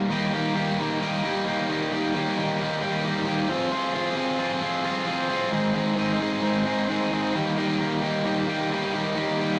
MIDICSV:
0, 0, Header, 1, 2, 480
1, 0, Start_track
1, 0, Tempo, 452489
1, 115, Time_signature, 4, 2, 24, 8
1, 10173, End_track
2, 0, Start_track
2, 0, Title_t, "Overdriven electric guitar"
2, 0, Program_c, 0, 29
2, 0, Note_on_c, 0, 67, 91
2, 104, Note_on_c, 0, 51, 97
2, 109, Note_off_c, 0, 67, 0
2, 114, Note_on_c, 0, 55, 107
2, 119, Note_on_c, 0, 58, 102
2, 120, Note_on_c, 0, 63, 117
2, 126, Note_on_c, 0, 67, 108
2, 339, Note_off_c, 0, 51, 0
2, 344, Note_on_c, 0, 51, 87
2, 346, Note_off_c, 0, 55, 0
2, 350, Note_on_c, 0, 55, 86
2, 351, Note_off_c, 0, 58, 0
2, 355, Note_on_c, 0, 58, 96
2, 357, Note_off_c, 0, 63, 0
2, 362, Note_on_c, 0, 63, 97
2, 363, Note_off_c, 0, 67, 0
2, 367, Note_on_c, 0, 67, 103
2, 577, Note_off_c, 0, 51, 0
2, 581, Note_on_c, 0, 51, 87
2, 584, Note_off_c, 0, 55, 0
2, 588, Note_on_c, 0, 55, 98
2, 590, Note_off_c, 0, 58, 0
2, 595, Note_on_c, 0, 58, 91
2, 596, Note_off_c, 0, 63, 0
2, 600, Note_on_c, 0, 63, 102
2, 604, Note_off_c, 0, 67, 0
2, 608, Note_on_c, 0, 67, 106
2, 813, Note_off_c, 0, 51, 0
2, 822, Note_off_c, 0, 55, 0
2, 825, Note_on_c, 0, 51, 89
2, 826, Note_off_c, 0, 58, 0
2, 834, Note_on_c, 0, 55, 95
2, 837, Note_off_c, 0, 63, 0
2, 839, Note_on_c, 0, 58, 91
2, 845, Note_off_c, 0, 67, 0
2, 849, Note_on_c, 0, 63, 92
2, 858, Note_on_c, 0, 67, 83
2, 1048, Note_off_c, 0, 51, 0
2, 1053, Note_off_c, 0, 55, 0
2, 1060, Note_off_c, 0, 58, 0
2, 1061, Note_on_c, 0, 51, 94
2, 1065, Note_on_c, 0, 55, 104
2, 1067, Note_off_c, 0, 63, 0
2, 1073, Note_on_c, 0, 58, 99
2, 1076, Note_off_c, 0, 67, 0
2, 1080, Note_on_c, 0, 63, 106
2, 1088, Note_on_c, 0, 67, 114
2, 1288, Note_off_c, 0, 51, 0
2, 1298, Note_off_c, 0, 55, 0
2, 1301, Note_on_c, 0, 51, 75
2, 1308, Note_off_c, 0, 58, 0
2, 1310, Note_off_c, 0, 63, 0
2, 1310, Note_on_c, 0, 55, 85
2, 1316, Note_off_c, 0, 67, 0
2, 1320, Note_on_c, 0, 58, 76
2, 1323, Note_on_c, 0, 63, 90
2, 1329, Note_on_c, 0, 67, 107
2, 1535, Note_off_c, 0, 51, 0
2, 1547, Note_off_c, 0, 55, 0
2, 1547, Note_on_c, 0, 51, 84
2, 1553, Note_off_c, 0, 58, 0
2, 1556, Note_off_c, 0, 63, 0
2, 1560, Note_on_c, 0, 55, 83
2, 1564, Note_off_c, 0, 67, 0
2, 1566, Note_on_c, 0, 58, 93
2, 1569, Note_on_c, 0, 63, 99
2, 1577, Note_on_c, 0, 67, 87
2, 1778, Note_off_c, 0, 51, 0
2, 1785, Note_off_c, 0, 55, 0
2, 1791, Note_on_c, 0, 51, 78
2, 1792, Note_off_c, 0, 58, 0
2, 1798, Note_off_c, 0, 63, 0
2, 1798, Note_on_c, 0, 55, 83
2, 1804, Note_on_c, 0, 58, 76
2, 1805, Note_off_c, 0, 67, 0
2, 1811, Note_on_c, 0, 63, 97
2, 1818, Note_on_c, 0, 67, 76
2, 2013, Note_off_c, 0, 51, 0
2, 2023, Note_off_c, 0, 55, 0
2, 2026, Note_on_c, 0, 51, 100
2, 2031, Note_off_c, 0, 58, 0
2, 2036, Note_on_c, 0, 55, 108
2, 2039, Note_off_c, 0, 67, 0
2, 2040, Note_off_c, 0, 63, 0
2, 2044, Note_on_c, 0, 58, 110
2, 2052, Note_on_c, 0, 67, 120
2, 2053, Note_on_c, 0, 63, 109
2, 2263, Note_off_c, 0, 51, 0
2, 2271, Note_off_c, 0, 55, 0
2, 2275, Note_off_c, 0, 58, 0
2, 2275, Note_on_c, 0, 51, 88
2, 2282, Note_off_c, 0, 63, 0
2, 2283, Note_on_c, 0, 55, 84
2, 2287, Note_off_c, 0, 67, 0
2, 2288, Note_on_c, 0, 58, 101
2, 2295, Note_on_c, 0, 63, 98
2, 2300, Note_on_c, 0, 67, 106
2, 2497, Note_off_c, 0, 51, 0
2, 2504, Note_off_c, 0, 55, 0
2, 2509, Note_off_c, 0, 58, 0
2, 2510, Note_on_c, 0, 51, 97
2, 2517, Note_off_c, 0, 63, 0
2, 2517, Note_on_c, 0, 55, 108
2, 2520, Note_off_c, 0, 67, 0
2, 2522, Note_on_c, 0, 58, 103
2, 2529, Note_on_c, 0, 63, 107
2, 2533, Note_on_c, 0, 67, 102
2, 2741, Note_off_c, 0, 51, 0
2, 2747, Note_off_c, 0, 55, 0
2, 2753, Note_off_c, 0, 58, 0
2, 2754, Note_on_c, 0, 51, 94
2, 2760, Note_off_c, 0, 63, 0
2, 2760, Note_on_c, 0, 55, 96
2, 2764, Note_off_c, 0, 67, 0
2, 2766, Note_on_c, 0, 58, 97
2, 2773, Note_on_c, 0, 63, 92
2, 2777, Note_on_c, 0, 67, 96
2, 2975, Note_off_c, 0, 51, 0
2, 2980, Note_off_c, 0, 55, 0
2, 2987, Note_on_c, 0, 51, 95
2, 2991, Note_off_c, 0, 58, 0
2, 2992, Note_on_c, 0, 55, 108
2, 2997, Note_off_c, 0, 63, 0
2, 2999, Note_off_c, 0, 67, 0
2, 3004, Note_on_c, 0, 58, 105
2, 3009, Note_on_c, 0, 63, 93
2, 3012, Note_on_c, 0, 67, 104
2, 3213, Note_off_c, 0, 51, 0
2, 3217, Note_off_c, 0, 55, 0
2, 3223, Note_off_c, 0, 58, 0
2, 3225, Note_on_c, 0, 51, 83
2, 3230, Note_on_c, 0, 55, 81
2, 3232, Note_off_c, 0, 63, 0
2, 3235, Note_off_c, 0, 67, 0
2, 3236, Note_on_c, 0, 58, 79
2, 3245, Note_on_c, 0, 63, 95
2, 3248, Note_on_c, 0, 67, 96
2, 3446, Note_off_c, 0, 51, 0
2, 3454, Note_off_c, 0, 55, 0
2, 3457, Note_off_c, 0, 58, 0
2, 3459, Note_on_c, 0, 51, 85
2, 3466, Note_off_c, 0, 63, 0
2, 3467, Note_on_c, 0, 55, 83
2, 3468, Note_off_c, 0, 67, 0
2, 3469, Note_on_c, 0, 58, 83
2, 3479, Note_on_c, 0, 63, 95
2, 3481, Note_on_c, 0, 67, 88
2, 3693, Note_off_c, 0, 51, 0
2, 3697, Note_off_c, 0, 55, 0
2, 3698, Note_off_c, 0, 58, 0
2, 3702, Note_on_c, 0, 53, 93
2, 3703, Note_off_c, 0, 63, 0
2, 3704, Note_off_c, 0, 67, 0
2, 3711, Note_on_c, 0, 60, 109
2, 3720, Note_on_c, 0, 65, 107
2, 3724, Note_on_c, 0, 68, 106
2, 3927, Note_off_c, 0, 53, 0
2, 3936, Note_off_c, 0, 65, 0
2, 3940, Note_on_c, 0, 53, 106
2, 3941, Note_off_c, 0, 60, 0
2, 3945, Note_on_c, 0, 60, 107
2, 3948, Note_on_c, 0, 65, 115
2, 3950, Note_off_c, 0, 68, 0
2, 3955, Note_on_c, 0, 68, 106
2, 4156, Note_off_c, 0, 53, 0
2, 4169, Note_on_c, 0, 53, 100
2, 4172, Note_off_c, 0, 65, 0
2, 4175, Note_off_c, 0, 60, 0
2, 4179, Note_on_c, 0, 60, 89
2, 4184, Note_on_c, 0, 65, 90
2, 4186, Note_off_c, 0, 68, 0
2, 4190, Note_on_c, 0, 68, 107
2, 4395, Note_off_c, 0, 53, 0
2, 4407, Note_off_c, 0, 65, 0
2, 4408, Note_on_c, 0, 53, 103
2, 4413, Note_off_c, 0, 60, 0
2, 4417, Note_on_c, 0, 60, 102
2, 4420, Note_on_c, 0, 65, 88
2, 4425, Note_off_c, 0, 68, 0
2, 4429, Note_on_c, 0, 68, 104
2, 4633, Note_off_c, 0, 53, 0
2, 4646, Note_on_c, 0, 53, 84
2, 4650, Note_off_c, 0, 65, 0
2, 4656, Note_off_c, 0, 60, 0
2, 4660, Note_on_c, 0, 60, 102
2, 4662, Note_off_c, 0, 68, 0
2, 4663, Note_on_c, 0, 65, 102
2, 4666, Note_on_c, 0, 68, 97
2, 4872, Note_off_c, 0, 53, 0
2, 4880, Note_off_c, 0, 60, 0
2, 4885, Note_on_c, 0, 53, 96
2, 4886, Note_off_c, 0, 65, 0
2, 4892, Note_on_c, 0, 60, 104
2, 4894, Note_off_c, 0, 68, 0
2, 4899, Note_on_c, 0, 65, 92
2, 4907, Note_on_c, 0, 68, 97
2, 5119, Note_off_c, 0, 53, 0
2, 5128, Note_off_c, 0, 60, 0
2, 5129, Note_off_c, 0, 65, 0
2, 5132, Note_on_c, 0, 53, 80
2, 5140, Note_off_c, 0, 68, 0
2, 5141, Note_on_c, 0, 60, 92
2, 5142, Note_on_c, 0, 65, 94
2, 5153, Note_on_c, 0, 68, 90
2, 5356, Note_off_c, 0, 53, 0
2, 5361, Note_off_c, 0, 60, 0
2, 5369, Note_on_c, 0, 53, 96
2, 5370, Note_off_c, 0, 65, 0
2, 5374, Note_on_c, 0, 60, 99
2, 5376, Note_off_c, 0, 68, 0
2, 5382, Note_on_c, 0, 65, 90
2, 5389, Note_on_c, 0, 68, 87
2, 5599, Note_off_c, 0, 53, 0
2, 5605, Note_off_c, 0, 60, 0
2, 5611, Note_off_c, 0, 65, 0
2, 5612, Note_on_c, 0, 53, 85
2, 5618, Note_on_c, 0, 60, 92
2, 5623, Note_off_c, 0, 68, 0
2, 5624, Note_on_c, 0, 65, 91
2, 5635, Note_on_c, 0, 68, 86
2, 5846, Note_on_c, 0, 44, 101
2, 5849, Note_off_c, 0, 53, 0
2, 5852, Note_off_c, 0, 60, 0
2, 5853, Note_on_c, 0, 51, 112
2, 5855, Note_off_c, 0, 65, 0
2, 5860, Note_off_c, 0, 68, 0
2, 5862, Note_on_c, 0, 56, 100
2, 5866, Note_on_c, 0, 60, 108
2, 5872, Note_on_c, 0, 63, 105
2, 5876, Note_on_c, 0, 68, 113
2, 6072, Note_off_c, 0, 44, 0
2, 6081, Note_off_c, 0, 51, 0
2, 6085, Note_on_c, 0, 44, 93
2, 6087, Note_off_c, 0, 56, 0
2, 6088, Note_off_c, 0, 60, 0
2, 6094, Note_on_c, 0, 51, 102
2, 6099, Note_off_c, 0, 68, 0
2, 6099, Note_on_c, 0, 56, 99
2, 6101, Note_on_c, 0, 60, 99
2, 6107, Note_off_c, 0, 63, 0
2, 6111, Note_on_c, 0, 63, 106
2, 6112, Note_on_c, 0, 68, 97
2, 6308, Note_off_c, 0, 44, 0
2, 6315, Note_off_c, 0, 51, 0
2, 6321, Note_on_c, 0, 44, 97
2, 6323, Note_off_c, 0, 56, 0
2, 6328, Note_on_c, 0, 51, 94
2, 6329, Note_off_c, 0, 60, 0
2, 6336, Note_on_c, 0, 56, 100
2, 6337, Note_off_c, 0, 68, 0
2, 6341, Note_off_c, 0, 63, 0
2, 6342, Note_on_c, 0, 60, 91
2, 6345, Note_on_c, 0, 63, 96
2, 6350, Note_on_c, 0, 68, 104
2, 6557, Note_off_c, 0, 44, 0
2, 6566, Note_off_c, 0, 51, 0
2, 6568, Note_off_c, 0, 56, 0
2, 6569, Note_on_c, 0, 44, 75
2, 6571, Note_off_c, 0, 60, 0
2, 6579, Note_on_c, 0, 51, 102
2, 6581, Note_on_c, 0, 56, 97
2, 6584, Note_on_c, 0, 60, 86
2, 6587, Note_off_c, 0, 68, 0
2, 6589, Note_off_c, 0, 63, 0
2, 6594, Note_on_c, 0, 63, 94
2, 6599, Note_on_c, 0, 68, 98
2, 6793, Note_off_c, 0, 44, 0
2, 6797, Note_off_c, 0, 51, 0
2, 6803, Note_off_c, 0, 56, 0
2, 6806, Note_on_c, 0, 44, 92
2, 6810, Note_on_c, 0, 51, 87
2, 6811, Note_off_c, 0, 60, 0
2, 6816, Note_on_c, 0, 56, 98
2, 6821, Note_off_c, 0, 63, 0
2, 6824, Note_on_c, 0, 60, 106
2, 6825, Note_off_c, 0, 68, 0
2, 6825, Note_on_c, 0, 63, 109
2, 6837, Note_on_c, 0, 68, 114
2, 7036, Note_off_c, 0, 44, 0
2, 7043, Note_off_c, 0, 51, 0
2, 7049, Note_on_c, 0, 44, 85
2, 7050, Note_off_c, 0, 56, 0
2, 7054, Note_off_c, 0, 60, 0
2, 7056, Note_on_c, 0, 51, 81
2, 7063, Note_on_c, 0, 56, 88
2, 7067, Note_off_c, 0, 63, 0
2, 7067, Note_on_c, 0, 60, 88
2, 7069, Note_off_c, 0, 68, 0
2, 7072, Note_on_c, 0, 63, 104
2, 7082, Note_on_c, 0, 68, 98
2, 7293, Note_off_c, 0, 44, 0
2, 7298, Note_off_c, 0, 51, 0
2, 7303, Note_off_c, 0, 56, 0
2, 7306, Note_on_c, 0, 44, 85
2, 7311, Note_on_c, 0, 51, 86
2, 7312, Note_off_c, 0, 60, 0
2, 7316, Note_on_c, 0, 56, 96
2, 7321, Note_off_c, 0, 68, 0
2, 7325, Note_on_c, 0, 60, 95
2, 7326, Note_off_c, 0, 63, 0
2, 7330, Note_on_c, 0, 63, 90
2, 7333, Note_on_c, 0, 68, 100
2, 7528, Note_off_c, 0, 44, 0
2, 7534, Note_off_c, 0, 51, 0
2, 7541, Note_on_c, 0, 44, 72
2, 7542, Note_off_c, 0, 56, 0
2, 7545, Note_off_c, 0, 60, 0
2, 7547, Note_on_c, 0, 51, 84
2, 7555, Note_on_c, 0, 56, 74
2, 7558, Note_off_c, 0, 68, 0
2, 7558, Note_on_c, 0, 60, 87
2, 7563, Note_off_c, 0, 63, 0
2, 7567, Note_on_c, 0, 63, 82
2, 7571, Note_on_c, 0, 68, 95
2, 7773, Note_off_c, 0, 44, 0
2, 7776, Note_off_c, 0, 51, 0
2, 7780, Note_off_c, 0, 56, 0
2, 7781, Note_off_c, 0, 60, 0
2, 7788, Note_off_c, 0, 68, 0
2, 7788, Note_on_c, 0, 51, 106
2, 7793, Note_on_c, 0, 55, 99
2, 7799, Note_on_c, 0, 58, 114
2, 7803, Note_off_c, 0, 63, 0
2, 7807, Note_on_c, 0, 63, 116
2, 7812, Note_on_c, 0, 67, 97
2, 8014, Note_off_c, 0, 51, 0
2, 8019, Note_on_c, 0, 51, 85
2, 8025, Note_off_c, 0, 55, 0
2, 8029, Note_on_c, 0, 55, 84
2, 8030, Note_off_c, 0, 58, 0
2, 8034, Note_on_c, 0, 58, 99
2, 8035, Note_off_c, 0, 63, 0
2, 8039, Note_on_c, 0, 63, 101
2, 8044, Note_off_c, 0, 67, 0
2, 8048, Note_on_c, 0, 67, 102
2, 8259, Note_off_c, 0, 51, 0
2, 8264, Note_on_c, 0, 51, 94
2, 8265, Note_off_c, 0, 55, 0
2, 8270, Note_on_c, 0, 55, 96
2, 8275, Note_off_c, 0, 58, 0
2, 8277, Note_off_c, 0, 63, 0
2, 8279, Note_on_c, 0, 58, 108
2, 8281, Note_on_c, 0, 63, 99
2, 8284, Note_off_c, 0, 67, 0
2, 8288, Note_on_c, 0, 67, 100
2, 8489, Note_off_c, 0, 51, 0
2, 8499, Note_off_c, 0, 55, 0
2, 8502, Note_on_c, 0, 51, 88
2, 8507, Note_off_c, 0, 58, 0
2, 8511, Note_on_c, 0, 55, 85
2, 8513, Note_off_c, 0, 67, 0
2, 8514, Note_off_c, 0, 63, 0
2, 8520, Note_on_c, 0, 58, 88
2, 8526, Note_on_c, 0, 67, 93
2, 8527, Note_on_c, 0, 63, 100
2, 8724, Note_off_c, 0, 51, 0
2, 8733, Note_off_c, 0, 55, 0
2, 8737, Note_on_c, 0, 51, 94
2, 8738, Note_off_c, 0, 58, 0
2, 8746, Note_on_c, 0, 55, 104
2, 8747, Note_off_c, 0, 63, 0
2, 8751, Note_on_c, 0, 58, 110
2, 8752, Note_off_c, 0, 67, 0
2, 8760, Note_on_c, 0, 63, 108
2, 8765, Note_on_c, 0, 67, 101
2, 8974, Note_off_c, 0, 51, 0
2, 8984, Note_off_c, 0, 55, 0
2, 8986, Note_on_c, 0, 51, 80
2, 8990, Note_off_c, 0, 58, 0
2, 8990, Note_off_c, 0, 63, 0
2, 8997, Note_off_c, 0, 67, 0
2, 8997, Note_on_c, 0, 55, 93
2, 9002, Note_on_c, 0, 63, 98
2, 9003, Note_on_c, 0, 58, 94
2, 9009, Note_on_c, 0, 67, 100
2, 9224, Note_off_c, 0, 51, 0
2, 9232, Note_off_c, 0, 55, 0
2, 9236, Note_on_c, 0, 51, 80
2, 9238, Note_off_c, 0, 58, 0
2, 9243, Note_off_c, 0, 63, 0
2, 9245, Note_on_c, 0, 55, 84
2, 9248, Note_off_c, 0, 67, 0
2, 9250, Note_on_c, 0, 58, 83
2, 9256, Note_on_c, 0, 63, 98
2, 9261, Note_on_c, 0, 67, 105
2, 9461, Note_off_c, 0, 51, 0
2, 9469, Note_off_c, 0, 55, 0
2, 9474, Note_on_c, 0, 51, 85
2, 9476, Note_off_c, 0, 58, 0
2, 9479, Note_off_c, 0, 63, 0
2, 9482, Note_on_c, 0, 55, 86
2, 9484, Note_off_c, 0, 67, 0
2, 9489, Note_on_c, 0, 58, 81
2, 9492, Note_on_c, 0, 63, 82
2, 9497, Note_on_c, 0, 67, 86
2, 9694, Note_off_c, 0, 51, 0
2, 9703, Note_off_c, 0, 55, 0
2, 9707, Note_on_c, 0, 51, 102
2, 9710, Note_off_c, 0, 58, 0
2, 9711, Note_off_c, 0, 63, 0
2, 9715, Note_on_c, 0, 55, 93
2, 9719, Note_off_c, 0, 67, 0
2, 9722, Note_on_c, 0, 58, 104
2, 9723, Note_on_c, 0, 63, 117
2, 9732, Note_on_c, 0, 67, 119
2, 9933, Note_off_c, 0, 51, 0
2, 9946, Note_off_c, 0, 55, 0
2, 9946, Note_on_c, 0, 51, 85
2, 9952, Note_off_c, 0, 58, 0
2, 9954, Note_off_c, 0, 63, 0
2, 9959, Note_on_c, 0, 55, 101
2, 9962, Note_off_c, 0, 67, 0
2, 9965, Note_on_c, 0, 58, 95
2, 9967, Note_on_c, 0, 63, 106
2, 9974, Note_on_c, 0, 67, 99
2, 10173, Note_off_c, 0, 51, 0
2, 10173, Note_off_c, 0, 55, 0
2, 10173, Note_off_c, 0, 58, 0
2, 10173, Note_off_c, 0, 63, 0
2, 10173, Note_off_c, 0, 67, 0
2, 10173, End_track
0, 0, End_of_file